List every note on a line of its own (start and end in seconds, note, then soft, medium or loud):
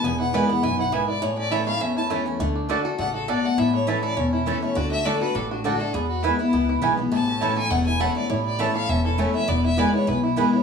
0.00 0.39 E1 medium
0.00 0.20 E4 medium
0.04 0.61 E2 loud
0.04 0.46 B3 medium
0.04 0.19 G#5 medium
0.20 0.33 E4 medium
0.20 0.35 F#5 medium
0.33 0.49 E3 medium
0.33 0.49 G#3 loud
0.33 0.43 B3 medium
0.33 0.49 B3 medium
0.33 0.62 E4 medium
0.33 0.44 E4 loud
0.33 0.48 E4 loud
0.33 0.44 B4 loud
0.33 0.52 D5 medium
0.33 0.44 G#5 loud
0.49 0.90 B3 medium
0.49 0.63 B3 soft
0.49 0.63 E4 medium
0.49 0.65 F#5 medium
0.63 0.99 B1 medium
0.63 0.91 F#2 medium
0.63 0.78 E4 medium
0.63 0.79 G#5 loud
0.79 1.07 E4 medium
0.79 0.94 F#5 medium
0.92 1.21 G#2 medium
0.92 1.21 B3 medium
0.92 1.02 B3 medium
0.92 1.02 E4 medium
0.92 1.03 B4 medium
0.92 1.08 E5 medium
0.92 1.03 G#5 medium
1.08 1.22 E4 medium
1.08 1.24 D5 medium
1.22 1.78 A2 loud
1.22 1.64 A3 medium
1.22 1.37 C#5 medium
1.37 1.78 C#4 medium
1.37 1.53 D5 loud
1.51 1.67 E3 medium
1.51 1.61 A3 medium
1.51 1.67 A3 medium
1.51 1.67 C#4 medium
1.51 1.61 E4 medium
1.51 1.94 E4 medium
1.51 1.65 E4 medium
1.51 1.61 C#5 loud
1.51 1.66 E5 medium
1.51 1.62 A5 loud
1.67 2.08 A3 medium
1.67 1.81 C#4 soft
1.67 1.80 E4 medium
1.67 1.82 F5 loud
1.80 2.37 E2 medium
1.80 2.23 C#4 medium
1.80 1.96 E5 medium
1.97 2.37 E4 medium
1.97 2.05 A5 medium
2.10 2.25 E3 medium
2.10 2.20 A3 medium
2.10 2.26 A3 medium
2.10 2.39 A3 medium
2.10 2.26 C#4 medium
2.10 2.20 E4 medium
2.10 2.25 E4 loud
2.10 2.20 C#5 medium
2.10 2.20 A5 medium
2.26 2.40 C#4 medium
2.26 2.39 E4 medium
2.39 2.75 D2 medium
2.39 2.67 D3 loud
2.39 2.98 A3 medium
2.55 2.96 D4 medium
2.69 2.84 D3 medium
2.69 2.79 A3 loud
2.69 2.85 A3 medium
2.69 2.85 D4 loud
2.69 3.12 F#4 medium
2.69 2.79 F#4 medium
2.69 2.84 F#4 medium
2.69 2.79 D5 medium
2.69 2.80 A5 loud
2.85 2.99 D4 medium
2.85 2.98 F#4 medium
2.85 3.28 A4 medium
2.98 3.34 A1 medium
2.98 3.27 C#3 medium
2.98 3.44 A3 medium
2.98 3.14 F#5 loud
3.14 3.55 F#4 medium
3.14 3.31 A4 medium
3.28 3.56 B2 medium
3.28 3.38 A3 medium
3.28 3.38 F#4 medium
3.28 4.02 A4 medium
3.28 3.38 D5 medium
3.28 3.47 D5 medium
3.28 3.39 A5 medium
3.44 3.73 A3 medium
3.44 3.60 F#5 loud
3.58 3.93 A1 medium
3.58 4.14 A2 medium
3.58 3.86 E4 medium
3.58 3.74 E5 medium
3.74 4.14 A3 medium
3.74 3.89 C#5 medium
3.87 4.02 E3 medium
3.87 3.97 A3 medium
3.87 4.02 A3 medium
3.87 4.03 C#4 medium
3.87 4.30 E4 medium
3.87 3.97 E4 loud
3.87 4.01 E4 medium
3.87 4.03 B4 medium
3.87 3.97 C#5 medium
3.87 3.98 A5 loud
4.03 4.17 C#4 medium
4.03 4.16 E4 medium
4.03 4.44 A4 medium
4.03 4.18 D5 loud
4.17 4.53 E1 medium
4.17 4.73 E2 medium
4.17 4.46 C#4 medium
4.17 4.33 C#5 medium
4.33 4.73 E4 medium
4.33 4.48 E4 medium
4.46 4.61 E3 medium
4.46 4.56 A3 medium
4.46 4.62 A3 medium
4.46 4.76 C#4 medium
4.46 4.62 C#4 medium
4.46 4.56 E4 medium
4.46 4.61 E4 medium
4.46 4.61 A4 medium
4.46 4.56 C#5 medium
4.46 4.57 A5 medium
4.62 4.76 A3 medium
4.62 4.76 C#4 medium
4.62 4.75 E4 medium
4.62 4.78 C#5 medium
4.75 5.12 D2 medium
4.75 5.04 D3 loud
4.75 5.04 F#4 medium
4.75 4.91 D5 loud
4.92 5.32 A3 medium
4.92 5.07 E5 loud
5.05 5.20 D3 medium
5.05 5.21 A3 medium
5.05 5.15 A3 loud
5.05 5.21 D4 medium
5.05 5.48 F#4 medium
5.05 5.15 F#4 loud
5.05 5.20 F#4 loud
5.05 5.21 D5 loud
5.05 5.16 D5 loud
5.05 5.16 A5 loud
5.21 5.35 D4 medium
5.21 5.34 F#4 medium
5.21 5.62 A4 medium
5.21 5.37 B4 medium
5.35 5.70 A1 medium
5.35 5.91 A2 medium
5.35 5.64 D4 medium
5.35 5.50 A4 medium
5.51 5.66 D4 soft
5.51 5.92 F#4 medium
5.64 5.79 D3 medium
5.64 5.74 A3 medium
5.64 5.80 A3 medium
5.64 5.80 D4 medium
5.64 5.94 D4 medium
5.64 5.81 F#4 medium
5.64 5.74 F#4 medium
5.64 5.78 F#4 loud
5.64 5.74 D5 medium
5.64 5.75 A5 medium
5.80 5.94 A3 medium
5.80 5.94 D4 soft
5.80 5.93 F#4 medium
5.80 5.95 A4 medium
5.94 6.30 E2 medium
5.94 6.50 E2 loud
5.94 6.37 B3 medium
5.94 6.08 G#4 medium
6.09 6.24 F#4 medium
6.23 6.39 E3 medium
6.23 6.39 G#3 medium
6.23 6.33 B3 medium
6.23 6.39 B3 medium
6.23 6.38 E4 medium
6.23 6.33 E4 loud
6.23 6.39 E4 medium
6.23 6.38 E4 loud
6.23 6.33 B4 loud
6.23 6.34 G#5 loud
6.38 6.53 B3 medium
6.38 6.79 E4 medium
6.38 6.52 E4 medium
6.38 6.69 E4 medium
6.53 6.78 C#2 medium
6.53 7.09 B2 medium
6.53 6.96 B3 medium
6.69 6.82 E4 medium
6.82 7.08 B1 medium
6.82 6.97 E3 loud
6.82 6.98 G#3 medium
6.82 6.92 B3 medium
6.82 6.98 B3 medium
6.82 6.92 E4 medium
6.82 7.41 E4 medium
6.82 6.96 E4 medium
6.82 6.92 B4 medium
6.82 6.92 G#5 loud
6.97 7.12 B3 medium
6.97 7.11 E4 medium
7.12 7.47 A1 medium
7.12 7.68 A2 loud
7.12 7.54 A3 medium
7.12 7.54 A5 medium
7.28 7.68 C#4 medium
7.41 7.57 E3 medium
7.41 7.51 A3 medium
7.41 7.57 A3 medium
7.41 7.57 C#4 medium
7.41 7.51 E4 loud
7.41 7.86 E4 medium
7.41 7.55 E4 medium
7.41 7.51 C#5 loud
7.41 7.51 A5 loud
7.56 7.71 C#4 medium
7.56 7.70 E4 medium
7.56 7.98 A4 medium
7.56 7.72 G#5 loud
7.71 8.07 E1 medium
7.71 8.27 E2 loud
7.71 8.13 A3 medium
7.71 7.86 F#5 loud
7.86 8.30 E4 medium
7.86 8.02 G#5 loud
7.99 8.15 E3 medium
7.99 8.10 A3 medium
7.99 8.16 A3 medium
7.99 8.15 C#4 medium
7.99 8.10 E4 medium
7.99 8.14 E4 loud
7.99 8.43 A4 medium
7.99 8.10 C#5 medium
7.99 8.16 F#5 medium
7.99 8.11 A5 medium
8.15 8.57 A3 medium
8.15 8.30 C#4 soft
8.15 8.29 E4 medium
8.15 8.31 D5 medium
8.30 8.66 A1 medium
8.30 8.86 A2 loud
8.30 8.59 E4 medium
8.30 8.45 C#5 medium
8.46 8.61 D5 loud
8.59 8.74 E3 medium
8.59 8.69 A3 medium
8.59 8.75 A3 loud
8.59 8.75 C#4 medium
8.59 8.69 E4 loud
8.59 9.05 E4 medium
8.59 8.74 E4 medium
8.59 8.70 C#5 loud
8.59 8.75 E5 medium
8.59 8.70 A5 loud
8.75 8.89 C#4 medium
8.75 8.89 E4 medium
8.75 9.16 A4 medium
8.75 8.91 F5 loud
8.89 9.25 E1 loud
8.89 9.46 E2 medium
8.89 9.18 C#4 medium
8.89 9.05 E5 loud
9.05 9.64 E4 medium
9.05 9.21 A4 medium
9.18 9.34 E3 medium
9.18 9.28 A3 medium
9.18 9.34 A3 medium
9.18 9.49 C#4 medium
9.18 9.34 C#4 medium
9.18 9.29 E4 medium
9.18 9.32 E4 medium
9.18 9.34 C#5 medium
9.18 9.29 C#5 medium
9.18 9.29 A5 medium
9.33 9.48 A3 medium
9.33 9.48 C#4 soft
9.33 9.47 E4 medium
9.33 9.50 E5 loud
9.48 9.84 E1 medium
9.48 10.05 E2 loud
9.48 9.77 B3 medium
9.48 9.64 D5 medium
9.64 9.93 E4 medium
9.64 9.80 E5 loud
9.77 10.06 E3 medium
9.77 10.06 G#3 medium
9.77 10.06 B3 loud
9.77 9.88 B3 medium
9.77 10.20 B3 medium
9.77 10.06 E4 loud
9.77 9.88 E4 medium
9.77 9.88 B4 loud
9.77 9.94 D5 medium
9.77 9.88 G#5 loud
9.94 10.08 E4 medium
9.94 10.10 C#5 medium
10.07 10.43 B1 medium
10.07 10.63 B2 medium
10.07 10.23 E4 medium
10.07 10.24 B4 medium
10.24 10.53 E4 medium
10.24 10.40 E4 medium
10.36 10.63 E3 medium
10.36 10.63 G#3 medium
10.36 10.47 B3 medium
10.36 10.63 B3 medium
10.36 10.47 E4 medium
10.36 10.63 E4 loud
10.36 10.53 G#4 medium
10.36 10.47 B4 medium
10.36 10.47 G#5 medium
10.53 10.63 E4 medium
10.53 10.63 C#5 loud